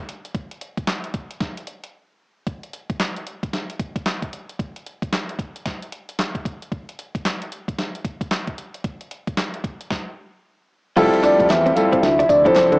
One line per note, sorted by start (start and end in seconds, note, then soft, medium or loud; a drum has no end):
0.09 closed hi-hat medium
0.25 closed hi-hat soft
0.34 kick loud
0.34 closed hi-hat medium
0.51 closed hi-hat soft
0.61 closed hi-hat medium
0.77 kick medium
0.77 closed hi-hat soft
0.87 snare loud
0.87 clap medium
0.87 closed hi-hat medium
1.04 closed hi-hat soft
1.14 kick medium
1.14 closed hi-hat medium
1.31 closed hi-hat medium
1.40 kick loud
1.40 snare medium
1.40 closed hi-hat medium
1.57 closed hi-hat medium
1.67 closed hi-hat medium
1.84 closed hi-hat medium
2.47 kick loud
2.47 closed hi-hat medium
2.63 closed hi-hat soft
2.73 closed hi-hat medium
2.90 kick medium
2.90 closed hi-hat soft
3.00 snare loud
3.00 clap medium
3.00 closed hi-hat medium
3.16 closed hi-hat soft
3.27 closed hi-hat medium
3.43 kick medium
3.43 closed hi-hat medium
3.53 snare medium
3.53 closed hi-hat medium
3.70 closed hi-hat medium
3.79 kick medium
3.79 closed hi-hat medium
3.96 kick medium
3.96 closed hi-hat medium
4.06 snare loud
4.06 clap medium
4.06 closed hi-hat medium
4.22 kick medium
4.22 closed hi-hat soft
4.33 closed hi-hat medium
4.49 closed hi-hat soft
4.59 kick loud
4.59 closed hi-hat medium
4.76 closed hi-hat soft
4.86 closed hi-hat medium
5.02 kick medium
5.02 closed hi-hat soft
5.13 snare loud
5.13 clap medium
5.13 closed hi-hat medium
5.29 closed hi-hat soft
5.39 kick medium
5.39 closed hi-hat medium
5.56 closed hi-hat medium
5.66 kick loud
5.66 snare medium
5.66 closed hi-hat medium
5.82 closed hi-hat soft
5.92 closed hi-hat medium
6.09 closed hi-hat medium
6.19 snare loud
6.19 clap medium
6.19 closed hi-hat medium
6.35 kick medium
6.35 closed hi-hat soft
6.45 kick medium
6.45 closed hi-hat medium
6.62 closed hi-hat soft
6.72 kick loud
6.72 closed hi-hat medium
6.89 closed hi-hat soft
6.99 closed hi-hat medium
7.15 kick medium
7.15 closed hi-hat soft
7.25 snare loud
7.25 clap medium
7.25 closed hi-hat medium
7.42 closed hi-hat soft
7.52 closed hi-hat medium
7.68 kick medium
7.68 closed hi-hat medium
7.79 snare medium
7.79 closed hi-hat medium
7.95 closed hi-hat medium
8.05 kick medium
8.05 closed hi-hat medium
8.21 kick medium
8.21 closed hi-hat medium
8.31 snare loud
8.31 clap medium
8.31 closed hi-hat medium
8.47 kick medium
8.47 closed hi-hat soft
8.58 closed hi-hat medium
8.74 closed hi-hat soft
8.84 kick loud
8.84 closed hi-hat medium
9.01 closed hi-hat soft
9.11 closed hi-hat medium
9.27 kick loud
9.27 closed hi-hat soft
9.37 snare loud
9.37 clap medium
9.37 closed hi-hat medium
9.54 closed hi-hat soft
9.64 kick medium
9.64 closed hi-hat medium
9.81 closed hi-hat medium
9.91 kick loud
9.91 snare medium
10.96 11.10 F1 loud
10.96 12.02 F3 medium
10.96 11.68 G3 medium
10.96 12.02 A3 medium
10.96 11.68 C4 medium
10.96 11.68 E4 medium
10.96 11.07 F4 medium
10.96 11.68 F4 medium
10.96 12.02 G4 medium
10.96 11.68 A4 loud
10.96 kick loud
10.96 closed hi-hat medium
10.96 crash loud
10.96 tambourine medium
11.13 muted clean electric guitar stroke soft
11.13 closed hi-hat soft
11.23 11.29 F2 soft
11.23 11.34 D4 medium
11.23 11.51 D5 loud
11.23 clap medium
11.23 closed hi-hat medium
11.23 tambourine medium
11.40 11.48 F2 loud
11.40 kick medium
11.40 closed hi-hat medium
11.49 11.71 E2 loud
11.49 11.72 E5 loud
11.49 snare loud
11.49 clap medium
11.49 closed hi-hat medium
11.49 tambourine medium
11.51 clap loud
11.66 11.72 C4 medium
11.66 closed hi-hat medium
11.72 11.77 E5 medium
11.72 12.02 F5 loud
11.72 muted clean electric guitar stroke soft
11.76 12.03 G3 medium
11.76 12.03 C4 medium
11.76 12.03 E4 medium
11.76 12.03 F4 medium
11.76 12.03 A4 medium
11.76 closed hi-hat medium
11.76 tambourine medium
11.92 11.99 C4 medium
11.92 kick medium
11.92 closed hi-hat medium
12.02 12.24 D2 loud
12.02 12.79 C3 medium
12.02 12.79 F3 medium
12.02 12.79 E4 medium
12.02 12.31 E5 loud
12.02 snare medium
12.02 closed hi-hat medium
12.02 tambourine medium
12.19 12.26 D4 medium
12.19 closed hi-hat medium
12.29 12.51 D2 medium
12.29 12.48 D5 loud
12.29 muted clean electric guitar stroke soft
12.29 kick loud
12.29 closed hi-hat medium
12.29 tambourine medium
12.45 12.79 F3 medium
12.45 12.79 C4 medium
12.45 12.52 D4 medium
12.45 12.79 D4 medium
12.45 12.79 E4 medium
12.45 12.79 A4 medium
12.45 12.79 C5 medium
12.45 kick loud
12.45 closed hi-hat medium
12.55 12.66 C4 medium
12.55 snare loud
12.55 clap medium
12.55 closed hi-hat medium
12.55 tambourine loud
12.57 clap medium
12.72 12.79 D3 loud
12.72 kick medium
12.72 closed hi-hat soft